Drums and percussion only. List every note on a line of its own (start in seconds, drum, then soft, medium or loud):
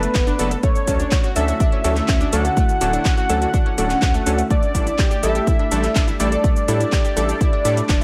0.03 closed hi-hat medium
0.03 shaker soft
0.15 kick loud
0.15 clap loud
0.15 closed hi-hat medium
0.15 shaker soft
0.27 closed hi-hat soft
0.27 shaker soft
0.39 open hi-hat loud
0.39 shaker medium
0.51 closed hi-hat medium
0.51 shaker soft
0.63 kick loud
0.63 closed hi-hat soft
0.63 shaker soft
0.75 closed hi-hat soft
0.75 shaker soft
0.88 kick medium
0.88 open hi-hat loud
0.88 shaker medium
1.00 closed hi-hat medium
1.00 shaker soft
1.11 kick loud
1.11 clap loud
1.11 closed hi-hat medium
1.11 shaker soft
1.24 closed hi-hat soft
1.24 shaker soft
1.36 open hi-hat loud
1.36 shaker medium
1.48 closed hi-hat medium
1.48 shaker soft
1.60 kick loud
1.60 closed hi-hat medium
1.60 shaker soft
1.72 closed hi-hat soft
1.84 open hi-hat loud
1.84 shaker medium
1.96 clap soft
1.96 closed hi-hat medium
1.96 shaker soft
2.08 kick loud
2.08 clap loud
2.08 closed hi-hat medium
2.08 shaker soft
2.21 closed hi-hat soft
2.21 shaker soft
2.33 open hi-hat loud
2.33 shaker medium
2.45 closed hi-hat medium
2.45 shaker soft
2.57 kick loud
2.57 closed hi-hat soft
2.57 shaker soft
2.69 closed hi-hat soft
2.69 shaker soft
2.81 open hi-hat loud
2.81 shaker medium
2.93 closed hi-hat medium
2.93 shaker soft
3.05 kick loud
3.05 clap loud
3.05 closed hi-hat medium
3.05 shaker soft
3.17 closed hi-hat soft
3.17 shaker soft
3.29 open hi-hat loud
3.29 shaker medium
3.42 closed hi-hat medium
3.42 shaker soft
3.54 kick loud
3.54 closed hi-hat medium
3.54 shaker soft
3.66 closed hi-hat soft
3.78 open hi-hat loud
3.78 shaker medium
3.90 clap soft
3.90 closed hi-hat medium
3.90 shaker soft
4.02 kick loud
4.02 clap loud
4.02 closed hi-hat medium
4.02 shaker soft
4.14 closed hi-hat soft
4.14 shaker soft
4.26 open hi-hat loud
4.26 shaker medium
4.38 closed hi-hat medium
4.38 shaker soft
4.50 kick loud
4.50 closed hi-hat soft
4.50 shaker soft
4.63 closed hi-hat soft
4.63 shaker soft
4.75 kick medium
4.75 open hi-hat loud
4.75 shaker medium
4.87 closed hi-hat medium
4.87 shaker soft
4.99 kick loud
4.99 clap loud
4.99 closed hi-hat soft
4.99 shaker soft
5.11 closed hi-hat soft
5.11 shaker soft
5.23 open hi-hat loud
5.23 shaker medium
5.35 closed hi-hat medium
5.35 shaker soft
5.47 kick loud
5.47 closed hi-hat medium
5.47 shaker soft
5.59 closed hi-hat soft
5.71 open hi-hat loud
5.71 shaker medium
5.83 clap soft
5.83 closed hi-hat medium
5.83 shaker soft
5.95 kick loud
5.95 clap loud
5.95 closed hi-hat soft
5.95 shaker soft
6.08 closed hi-hat soft
6.08 shaker soft
6.20 open hi-hat loud
6.20 shaker medium
6.32 closed hi-hat medium
6.32 shaker soft
6.44 kick loud
6.44 closed hi-hat medium
6.44 shaker soft
6.56 closed hi-hat soft
6.56 shaker soft
6.68 open hi-hat loud
6.68 shaker medium
6.80 closed hi-hat medium
6.80 shaker soft
6.92 kick loud
6.92 clap loud
6.92 closed hi-hat medium
6.92 shaker soft
7.05 closed hi-hat soft
7.05 shaker soft
7.17 open hi-hat loud
7.17 shaker medium
7.29 closed hi-hat medium
7.29 shaker soft
7.41 kick loud
7.41 closed hi-hat medium
7.41 shaker soft
7.53 closed hi-hat soft
7.65 open hi-hat loud
7.65 shaker medium
7.77 closed hi-hat medium
7.77 shaker soft
7.89 kick loud
7.89 clap loud
7.89 closed hi-hat medium
7.89 shaker soft